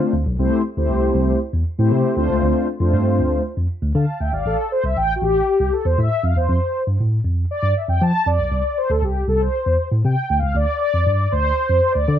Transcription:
0.00 0.14 A3 medium
0.00 0.14 C4 medium
0.00 0.14 D4 medium
0.00 0.14 F4 medium
0.00 0.14 C5 medium
0.13 0.23 D2 loud
0.26 0.36 B1 loud
0.38 0.49 C2 loud
0.38 0.62 A3 loud
0.38 0.62 C4 medium
0.38 0.62 E4 medium
0.38 0.62 G4 medium
0.38 0.62 C5 loud
0.77 0.86 D2 medium
0.77 1.39 A3 medium
0.77 1.39 C4 medium
0.77 1.39 E4 medium
0.77 1.39 G4 medium
0.77 1.40 C5 medium
0.90 1.09 C2 medium
1.15 1.34 C2 loud
1.53 1.63 E2 medium
1.78 1.88 A2 medium
1.78 2.15 A3 medium
1.78 2.15 C4 medium
1.78 2.17 E4 medium
1.78 2.17 G4 medium
1.78 2.16 C5 loud
1.92 2.01 C3 loud
2.16 2.26 D2 loud
2.16 2.67 A3 medium
2.16 2.67 C4 medium
2.16 2.67 D4 medium
2.16 2.67 F4 medium
2.16 2.68 C5 loud
2.29 2.39 C#2 medium
2.42 2.52 D2 loud
2.80 2.93 F2 loud
2.80 3.42 A3 medium
2.80 3.42 C4 medium
2.80 3.42 D4 medium
2.80 3.42 F4 medium
2.80 3.43 C5 loud
2.93 3.18 G2 medium
3.19 3.38 D2 medium
3.57 3.66 F2 medium
3.82 3.92 D2 loud
3.95 4.04 D3 loud
3.95 4.19 F5 medium
3.95 4.19 A5 medium
4.20 4.30 D2 medium
4.20 4.32 E5 medium
4.20 4.32 G5 medium
4.33 4.42 G#1 medium
4.33 4.57 D5 medium
4.33 4.57 F5 medium
4.46 4.55 A1 medium
4.46 4.72 A4 loud
4.72 4.84 C5 loud
4.84 4.93 C2 medium
4.84 4.97 E5 loud
4.96 5.15 A1 medium
4.96 5.14 G5 loud
5.16 5.22 F#4 medium
5.22 5.41 A1 medium
5.22 5.74 G4 loud
5.60 5.69 C2 medium
5.73 5.86 A4 medium
5.85 5.95 E2 medium
5.85 5.99 C5 medium
5.98 6.08 A2 loud
5.98 6.24 E5 medium
6.24 6.33 F2 loud
6.24 6.37 F5 medium
6.36 6.46 E2 medium
6.36 6.84 C5 medium
6.49 6.59 F2 loud
6.87 6.97 G2 medium
7.00 7.19 A2 medium
7.25 7.44 F2 medium
7.51 7.74 D5 loud
7.63 7.73 G2 medium
7.77 7.82 E5 loud
7.89 7.98 F2 medium
7.89 8.02 G5 loud
8.02 8.11 F3 medium
8.02 8.28 A5 loud
8.26 8.36 F2 loud
8.26 8.79 D5 medium
8.39 8.49 B1 medium
8.52 8.61 C2 medium
8.78 8.91 C5 loud
8.90 9.00 D2 medium
8.90 9.03 A4 medium
9.03 9.22 C2 medium
9.03 9.27 G4 medium
9.28 9.47 C2 medium
9.28 9.42 A4 medium
9.41 9.89 C5 medium
9.66 9.76 E2 medium
9.92 10.01 A2 medium
10.05 10.14 C3 loud
10.05 10.40 G5 loud
10.30 10.40 D2 loud
10.39 10.52 C#2 medium
10.39 10.56 F5 medium
10.55 10.65 D2 loud
10.55 10.80 D5 loud
10.81 11.33 D5 loud
10.94 11.03 F2 medium
11.07 11.26 G2 medium
11.32 11.51 D2 medium
11.32 11.93 C5 medium
11.70 11.80 F2 medium
11.92 12.05 D2 medium
11.92 12.19 D5 medium
12.08 12.18 D3 loud

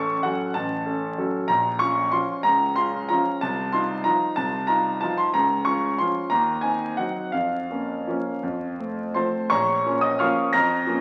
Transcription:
0.00 0.27 A1 medium
0.00 0.22 C#4 soft
0.00 0.22 A4 medium
0.00 0.27 A5 loud
0.00 0.24 C#6 medium
0.23 0.52 F#3 soft
0.23 0.53 C#4 soft
0.23 0.53 A4 medium
0.23 0.55 F#5 medium
0.54 0.85 A1 medium
0.54 1.17 A5 medium
0.86 1.15 C#4 soft
0.86 1.15 A4 soft
1.18 1.46 F#3 soft
1.18 1.47 C#4 soft
1.18 1.47 A4 medium
1.48 1.80 A#1 medium
1.48 1.80 A#5 loud
1.79 2.10 C#4 soft
1.79 2.10 F4 soft
1.79 2.13 C#6 loud
2.12 2.42 F3 soft
2.12 2.42 C#4 soft
2.12 2.42 F4 medium
2.12 2.44 C6 loud
2.43 2.76 C#2 medium
2.43 2.76 A#5 loud
2.76 3.07 C#4 soft
2.76 3.07 F4 soft
2.76 3.10 C6 loud
3.09 3.38 F3 soft
3.09 3.39 C#4 soft
3.09 3.39 F4 medium
3.09 3.41 A#5 medium
3.41 3.73 C2 medium
3.41 3.73 A5 loud
3.72 4.02 D#4 medium
3.72 4.02 F4 medium
3.72 4.05 C6 medium
4.04 4.34 F3 soft
4.04 4.34 D#4 medium
4.04 4.35 F4 soft
4.04 4.37 A#5 loud
4.36 4.68 C2 medium
4.36 4.68 A5 loud
4.67 4.98 D#4 soft
4.67 4.98 F4 medium
4.67 5.01 A#5 loud
5.01 5.30 F3 soft
5.01 5.31 D#4 soft
5.01 5.31 F4 medium
5.01 5.18 A5 loud
5.17 5.33 C6 medium
5.34 5.65 C#2 medium
5.34 5.65 A#5 loud
5.65 5.96 C#4 soft
5.65 5.96 F4 soft
5.65 5.98 C#6 medium
5.98 6.28 F3 soft
5.98 6.28 C#4 soft
5.98 6.29 F4 soft
5.98 6.30 C6 loud
6.30 6.62 D#2 medium
6.30 6.62 A#5 loud
6.61 6.94 C4 soft
6.61 6.95 D#4 soft
6.61 6.97 G#5 medium
6.97 7.30 F#3 soft
6.97 7.31 C4 soft
6.97 7.31 D#4 soft
6.97 7.33 F#5 medium
7.32 7.69 F2 medium
7.32 9.14 F5 medium
7.70 8.04 A#3 soft
7.70 8.04 C#4 soft
8.07 8.40 F3 soft
8.07 8.41 A#3 soft
8.07 8.41 C#4 medium
8.43 8.78 F2 medium
8.79 9.12 A3 soft
8.79 9.12 C4 soft
9.14 9.47 F3 soft
9.14 9.47 A3 soft
9.14 9.48 C4 soft
9.14 9.48 C5 medium
9.14 9.48 A5 medium
9.14 9.50 C6 medium
9.50 9.84 A#1 medium
9.50 9.99 C#5 medium
9.50 9.99 A#5 medium
9.50 10.02 C#6 loud
9.85 10.16 F3 soft
9.85 10.16 A#3 soft
9.85 10.16 C#4 medium
10.01 10.18 D#5 medium
10.01 10.19 D#6 medium
10.19 10.51 F3 soft
10.19 10.51 A#3 medium
10.19 10.51 C#4 medium
10.19 10.52 F5 medium
10.19 10.51 C#6 medium
10.19 10.52 F6 medium
10.53 10.86 F2 medium
10.53 11.01 A#5 medium
10.53 11.01 F6 medium
10.53 11.01 A#6 loud
10.87 11.01 F3 soft
10.87 11.01 A#3 medium
10.87 11.01 C#4 medium

